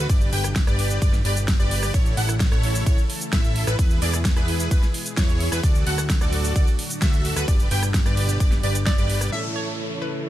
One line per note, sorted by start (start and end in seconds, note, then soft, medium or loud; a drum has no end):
0.00 1.90 D3 medium
0.00 1.90 D4 medium
0.09 0.30 G1 loud
0.09 1.92 B2 medium
0.09 1.92 G3 medium
0.09 1.92 G4 medium
0.09 0.30 G4 medium
0.09 0.30 B4 medium
0.09 0.30 D5 medium
0.09 kick loud
0.09 closed hi-hat medium
0.09 ride medium
0.09 cabasa medium
0.21 closed hi-hat soft
0.21 cabasa soft
0.33 0.65 G1 loud
0.33 0.46 G4 loud
0.33 0.46 B4 medium
0.33 0.46 G5 loud
0.33 open hi-hat loud
0.44 cross-stick medium
0.44 closed hi-hat soft
0.44 cabasa medium
0.56 kick loud
0.56 snare loud
0.56 closed hi-hat soft
0.56 ride medium
0.56 cabasa medium
0.67 0.99 G1 loud
0.67 0.99 G4 medium
0.67 0.99 B4 medium
0.67 0.99 D5 medium
0.67 cross-stick medium
0.67 closed hi-hat soft
0.67 cabasa soft
0.79 open hi-hat loud
0.90 closed hi-hat soft
0.90 cabasa medium
1.02 1.23 G1 loud
1.02 1.15 G4 medium
1.02 1.15 B4 medium
1.02 1.15 D5 loud
1.02 kick loud
1.02 closed hi-hat soft
1.02 ride medium
1.02 cabasa medium
1.13 snare soft
1.13 closed hi-hat soft
1.13 cabasa soft
1.25 1.57 G1 loud
1.25 1.38 G4 medium
1.25 1.38 B4 medium
1.25 1.38 D5 medium
1.25 open hi-hat loud
1.37 closed hi-hat soft
1.37 cabasa medium
1.48 kick loud
1.48 snare loud
1.48 closed hi-hat medium
1.48 ride medium
1.48 cabasa medium
1.59 1.92 G1 loud
1.59 1.91 G4 loud
1.59 1.91 B4 medium
1.59 1.91 D5 loud
1.59 closed hi-hat soft
1.59 cabasa soft
1.71 open hi-hat loud
1.83 cross-stick medium
1.83 open hi-hat medium
1.83 cabasa medium
1.94 2.15 A1 loud
1.94 3.77 C#3 medium
1.94 5.60 E3 medium
1.94 3.77 A3 medium
1.94 5.60 E4 medium
1.94 2.14 E4 medium
1.94 2.14 A4 medium
1.94 3.77 A4 medium
1.94 2.14 C#5 medium
1.94 kick loud
1.94 closed hi-hat soft
1.94 ride medium
1.94 cabasa medium
2.06 closed hi-hat soft
2.06 cabasa soft
2.17 2.50 A1 loud
2.17 2.30 E4 loud
2.17 2.30 A4 medium
2.17 2.30 F#5 loud
2.17 open hi-hat loud
2.29 cross-stick medium
2.29 closed hi-hat medium
2.29 cabasa medium
2.40 kick loud
2.40 snare loud
2.40 closed hi-hat soft
2.40 ride medium
2.40 cabasa medium
2.52 2.84 A1 loud
2.52 2.84 E4 medium
2.52 2.84 A4 medium
2.52 2.84 C#5 medium
2.52 cross-stick medium
2.52 closed hi-hat soft
2.52 cabasa soft
2.63 open hi-hat loud
2.75 open hi-hat medium
2.75 cabasa medium
2.86 2.97 A1 loud
2.86 3.00 E4 medium
2.86 3.00 A4 medium
2.86 3.00 C#5 loud
2.86 kick loud
2.86 closed hi-hat medium
2.86 ride medium
2.86 cabasa medium
2.98 closed hi-hat soft
2.98 cabasa soft
3.10 open hi-hat loud
3.21 closed hi-hat soft
3.21 cabasa medium
3.33 3.65 A1 medium
3.33 3.65 E4 medium
3.33 3.65 A4 medium
3.33 3.64 E5 medium
3.33 3.65 E5 medium
3.33 kick loud
3.33 snare loud
3.33 closed hi-hat medium
3.33 ride medium
3.33 cabasa medium
3.44 closed hi-hat soft
3.44 cabasa soft
3.56 open hi-hat loud
3.67 3.76 A1 loud
3.67 3.76 E4 medium
3.67 3.76 A4 medium
3.67 3.76 B4 loud
3.67 cross-stick medium
3.67 closed hi-hat medium
3.67 cabasa medium
3.79 4.00 E2 medium
3.79 5.62 B2 medium
3.79 5.62 G#3 medium
3.79 3.99 E4 medium
3.79 3.99 G#4 medium
3.79 5.62 G#4 medium
3.79 3.99 B4 medium
3.79 kick loud
3.79 closed hi-hat medium
3.79 ride medium
3.79 cabasa medium
3.90 closed hi-hat soft
3.90 cabasa soft
4.02 4.34 E2 loud
4.02 4.15 E4 loud
4.02 4.15 G#4 medium
4.02 4.15 D5 loud
4.02 open hi-hat loud
4.13 cross-stick medium
4.13 closed hi-hat medium
4.13 cabasa medium
4.25 kick loud
4.25 snare loud
4.25 closed hi-hat medium
4.25 ride medium
4.25 cabasa medium
4.36 4.69 E2 loud
4.36 4.68 E4 medium
4.36 4.68 G#4 medium
4.36 4.68 B4 medium
4.36 cross-stick medium
4.36 closed hi-hat soft
4.36 cabasa soft
4.48 open hi-hat loud
4.60 closed hi-hat soft
4.60 cabasa medium
4.71 4.82 E2 loud
4.71 4.84 E4 medium
4.71 4.84 G#4 medium
4.71 4.84 B4 medium
4.71 kick loud
4.71 closed hi-hat medium
4.71 ride medium
4.71 cabasa medium
4.83 snare soft
4.83 closed hi-hat soft
4.83 cabasa soft
4.94 open hi-hat loud
5.06 closed hi-hat medium
5.06 cabasa medium
5.17 5.50 E2 medium
5.17 5.49 E4 medium
5.17 5.49 G#4 medium
5.17 5.49 C#5 medium
5.17 kick loud
5.17 snare loud
5.17 closed hi-hat medium
5.17 ride medium
5.17 cabasa medium
5.29 closed hi-hat soft
5.29 cabasa soft
5.40 open hi-hat loud
5.52 5.61 E2 loud
5.52 5.61 E4 medium
5.52 5.61 G#4 medium
5.52 5.61 B4 loud
5.52 cross-stick medium
5.52 open hi-hat medium
5.52 cabasa medium
5.63 5.84 D2 loud
5.63 7.46 A2 medium
5.63 7.46 D3 medium
5.63 7.46 F#3 medium
5.63 9.29 D4 medium
5.63 7.46 F#4 medium
5.63 5.84 F#4 medium
5.63 5.84 A4 medium
5.63 5.84 D5 medium
5.63 kick loud
5.63 closed hi-hat medium
5.63 ride medium
5.63 cabasa medium
5.75 closed hi-hat soft
5.75 cabasa soft
5.86 6.19 D2 medium
5.86 5.99 F#4 loud
5.86 6.00 A4 medium
5.86 5.99 F#5 loud
5.86 6.00 F#5 loud
5.86 open hi-hat loud
5.98 cross-stick medium
5.98 closed hi-hat medium
5.98 cabasa medium
6.10 kick loud
6.10 snare loud
6.10 closed hi-hat medium
6.10 ride medium
6.10 cabasa medium
6.21 6.53 D2 loud
6.21 6.53 F#4 medium
6.21 6.53 A4 medium
6.21 6.53 D5 medium
6.21 cross-stick medium
6.21 closed hi-hat soft
6.21 cabasa soft
6.33 open hi-hat loud
6.44 open hi-hat medium
6.44 cabasa medium
6.56 6.66 D2 loud
6.56 6.69 F#4 medium
6.56 6.69 A4 medium
6.56 6.69 D5 loud
6.56 kick loud
6.56 closed hi-hat medium
6.56 ride medium
6.56 cabasa medium
6.67 closed hi-hat soft
6.67 cabasa soft
6.79 open hi-hat loud
6.90 closed hi-hat medium
6.90 cabasa medium
7.02 7.34 D2 medium
7.02 7.34 F#4 medium
7.02 7.34 A4 medium
7.02 7.34 E5 medium
7.02 kick loud
7.02 snare loud
7.02 closed hi-hat medium
7.02 ride medium
7.02 cabasa medium
7.13 closed hi-hat soft
7.13 cabasa soft
7.25 open hi-hat loud
7.36 7.46 D2 medium
7.36 7.45 F#4 medium
7.36 7.45 A4 medium
7.36 7.45 B4 loud
7.36 cross-stick medium
7.36 closed hi-hat medium
7.36 cabasa medium
7.48 7.69 G1 loud
7.48 9.31 B2 medium
7.48 9.31 D3 medium
7.48 9.31 G3 medium
7.48 9.31 G4 medium
7.48 7.68 G4 medium
7.48 7.68 B4 medium
7.48 7.68 D5 medium
7.48 kick loud
7.48 closed hi-hat medium
7.48 ride medium
7.48 cabasa medium
7.60 closed hi-hat soft
7.60 cabasa soft
7.71 8.03 G1 loud
7.71 7.84 G4 loud
7.71 7.84 B4 medium
7.71 7.84 G5 loud
7.71 open hi-hat loud
7.83 cross-stick medium
7.83 closed hi-hat medium
7.83 cabasa medium
7.94 kick loud
7.94 snare loud
7.94 closed hi-hat medium
7.94 ride medium
7.94 cabasa medium
8.06 8.38 G1 loud
8.06 8.38 G4 medium
8.06 8.38 B4 medium
8.06 8.38 D5 medium
8.06 cross-stick medium
8.06 closed hi-hat soft
8.06 cabasa soft
8.17 open hi-hat loud
8.29 closed hi-hat medium
8.29 cabasa medium
8.40 8.61 G1 loud
8.40 8.53 G4 medium
8.40 8.53 B4 medium
8.40 8.53 D5 loud
8.40 8.53 D5 medium
8.40 kick loud
8.40 closed hi-hat medium
8.40 ride medium
8.40 cabasa medium
8.52 snare soft
8.52 closed hi-hat soft
8.52 cabasa soft
8.63 8.96 G1 loud
8.63 8.76 G4 medium
8.63 8.76 B4 medium
8.63 8.76 D5 medium
8.63 open hi-hat loud
8.75 closed hi-hat medium
8.75 cabasa medium
8.86 9.34 D5 loud
8.86 kick loud
8.86 snare loud
8.86 closed hi-hat medium
8.86 ride medium
8.86 cabasa medium
8.98 9.30 G1 loud
8.98 9.30 G4 medium
8.98 9.30 B4 medium
8.98 9.30 D5 loud
8.98 closed hi-hat soft
8.98 cabasa soft
9.10 open hi-hat loud
9.21 cross-stick medium
9.21 open hi-hat medium
9.21 cabasa medium
9.31 10.29 A2 medium
9.31 10.29 C#3 medium
9.31 10.29 E3 medium
9.31 10.29 A3 medium
9.31 10.29 C#4 medium
9.31 10.29 E4 medium
9.31 10.29 A4 medium
9.31 10.29 C#5 medium
9.31 9.56 E5 loud
9.31 crash medium
9.31 downlifter medium
9.56 9.99 C#5 loud
10.02 10.29 B4 loud